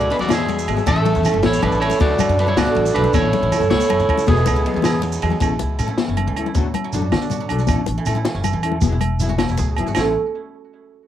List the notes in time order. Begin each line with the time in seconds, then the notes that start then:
Already playing: C#4
0.01 E4
0.10 G#3 B3 D4 F#4 B4, ride, shekere
0.15 G#4
0.19 E2 F#3 F#4 D5, low conga, shekere
0.29 E4 G#4, snare, ride, high conga, low agogo, shekere
0.33 E5
0.48 F#3, ride, low conga, shekere
0.59 shekere
0.68 G#1 G#3 B3 F#4 G#4, ride, low agogo
0.76 F#3, low conga, shekere
0.86 A1 C#4 E4 A4 E5, kick, ride, high conga, low agogo, shekere
0.96 A3
1.05 E3, ride, low conga, shekere
1.15 E2 C#4, shekere
1.23 A3 C#4 E4, snare, ride, low agogo, shekere
1.29 A4
1.34 F#1, low conga
1.42 A1 C#4 E4 C#5, snare, ride, high conga, shekere
1.53 shekere
1.62 A1 D4 B4, ride, low conga, low agogo
1.72 A1, shekere
1.80 A3 C#4 E4 C#5, ride, low agogo, shekere
1.85 muted clean electric guitar stroke
1.90 E3, low conga, shekere
2.00 D2 F#3 D4 F#4 A4 D5, kick, ride, high conga
2.19 F#2 F#3, ride, low conga, low agogo, shekere
2.29 F#2 D4, shekere
2.39 F#3 D4 F#4 A4 B4, ride, shekere
2.47 F#3 E4 C#5, low conga
2.57 C#2 D4 F#4 D5, snare, ride, high conga, low agogo, shekere
2.66 A3
2.75 A1, ride, low conga
2.85 D4, shekere
2.94 B1 F#3 A3 D4 F#4 B4, ride, low agogo
2.99 A4
3.04 low conga, shekere
3.13 A1 C#4 E4 A4 C#5, muted clean electric guitar stroke, kick, ride, high conga, low agogo, shekere
3.33 ride, low conga, shekere
3.42 A1 C#4
3.52 A3 C#4 E4 A4, snare, ride, low agogo, shekere
3.60 F#1 E3, low conga, shekere
3.70 C#2 C#4 E4 C#5, snare, ride, high conga
3.80 A3, low conga, shekere
3.90 F#2 E3, ride, low conga, low agogo
4.00 C#2 C#4, shekere
4.08 A3 C#4 E4 A4, kick, ride, low agogo
4.18 low conga, shekere
4.27 E1 B3 E4 F#4 G#4, muted clean electric guitar stroke, kick, ride, high conga
4.37 G#3, shekere
4.46 C#2 F#3, ride, low conga, low agogo, shekere
4.56 E4, shekere
4.66 F#3 G#3 B3 F#4 G#4, ride
4.74 E2 F#3, low conga
4.82 E4, snare, ride, high conga, low agogo, shekere
4.93 low conga
5.02 F#3, ride, low conga, shekere
5.12 low conga, shekere
5.22 E2 F#3 G#3 B3 F#4 G#4, ride, low agogo, shekere
5.30 F#3, low conga
5.40 A1 E3 C#4 E4 A4, kick, closed hi-hat, high conga, low agogo, shekere
5.59 C#2 E4, closed hi-hat, low conga, shekere
5.69 low conga
5.78 A2 C#4, closed hi-hat, low agogo, shekere
5.83 A4
5.88 E4, low conga
5.98 E3, snare, closed hi-hat, high conga
6.08 F#1 C#4
6.17 closed hi-hat, low conga, low agogo
6.27 C#2 E3
6.36 C#4 E4 A4, closed hi-hat, low agogo
6.46 E4, low conga
6.54 D2 F#3 D4 F#4 A4, muted clean electric guitar stroke, kick, closed hi-hat, high conga, low conga, shekere
6.74 closed hi-hat, low conga, low agogo
6.84 F#3
6.93 F#2 F#3 D4 F#4 A4, closed hi-hat, shekere
7.02 low conga
7.12 D3, snare, closed hi-hat, high conga, low agogo
7.22 D4, shekere
7.30 F#4, closed hi-hat, low conga, shekere
7.40 F#3
7.49 B1 F#3 D4 F#4 A4, closed hi-hat, low agogo
7.58 F#4, low conga, shekere
7.67 A1 C#4 E4 A4, kick, closed hi-hat, high conga, low agogo, shekere
7.86 A1, closed hi-hat, low conga, shekere
7.98 E3
8.05 A2 C#4 E4 A4, closed hi-hat, low agogo, shekere
8.15 E4, low conga
8.25 E3, snare, closed hi-hat, high conga
8.35 F#1 C#4
8.44 closed hi-hat, low conga, low agogo, shekere
8.53 E2 E3
8.63 C#4 E4 A4, closed hi-hat, low agogo
8.72 low conga
8.81 E1 F#3 B3 E4 G#4, kick, closed hi-hat, high conga, low conga, shekere
8.92 E4
9.01 closed hi-hat, low conga, low agogo
9.20 F#3 B3 E4 G#4, closed hi-hat, shekere
9.29 F#4, low conga
9.38 F#3, snare, closed hi-hat, high conga, low agogo
9.48 E1 E4, shekere
9.58 C#2 G#4, closed hi-hat, low conga, shekere
9.77 E1 F#3 B3 E4 G#4, closed hi-hat, low agogo
9.86 G#1 F#4, low conga, shekere
9.95 A1 A3 C#4 E4, snare, high conga, low agogo, shekere
10.00 A4